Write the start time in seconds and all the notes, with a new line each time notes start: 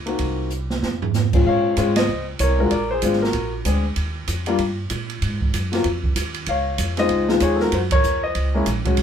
Already playing: C#2
0.06 A#3 C4 D#4 F#4, ride
0.19 C2, kick, ride
0.50 hi-hat pedal
0.70 snare
0.82 F2, snare
1.02 floor tom
1.14 snare, hi-hat pedal
1.33 A#2 G#3 C4 C#4 F4, kick, crash
1.46 A#2 C#5 F5
1.77 G#2 G#3 C4 C#4 F4, kick, hi-hat pedal, ride
1.96 C5 D#5, snare, ride
2.08 C#2
2.39 C2 C#5, kick, hi-hat pedal, ride
2.43 A#4
2.59 G#3 C4 D4 F4 F#4 A#4
2.71 A#1 A#4 D5, kick, ride
2.91 G#4 C5
3.02 G#1 G#3 C4 D4 F4, kick, hi-hat pedal, ride
3.13 snare
3.22 F#4 A#4, snare
3.33 A#1, kick, ride
3.65 D2 G#3 C4 D4 G#4, kick, hi-hat pedal, ride
3.96 D#2, kick, ride
4.28 F2, kick, hi-hat pedal, ride
4.46 G3 A#3 D4 F4, ride
4.58 G2, kick, ride
4.90 A#2, kick, hi-hat pedal, ride
5.10 ride
5.22 G#2, kick, ride
5.41 kick
5.53 F#2, kick, hi-hat pedal, ride
5.72 F#3 A#3 C4 F4, snare, ride
5.84 F2, kick, ride
6.04 kick
6.16 D#2, kick, hi-hat pedal, ride
6.34 ride
6.46 C#2 F5, kick, ride
6.50 C#5
6.78 F2, kick, hi-hat pedal, ride
6.97 G#3 C4 D#4 F4 D#5, snare, ride
7.01 C5
7.09 C#2, kick, ride
7.28 G#3 C4 D#4 F4, snare
7.40 D#2 C#5, kick, hi-hat pedal, ride
7.44 G#4
7.56 A4, snare
7.62 F#4 A#4
7.72 F#2 C5, kick, ride
7.77 F#4
7.91 C#5, kick, ride
7.95 A#4
8.04 E2, hi-hat pedal
8.23 C5 D#5
8.35 C#2, kick, ride
8.54 G#3 A#3 C#4 E4
8.66 A#1, kick, hi-hat pedal, ride
8.85 F#3 G#3 C#4 F#4, kick, ride
8.97 B1, kick, ride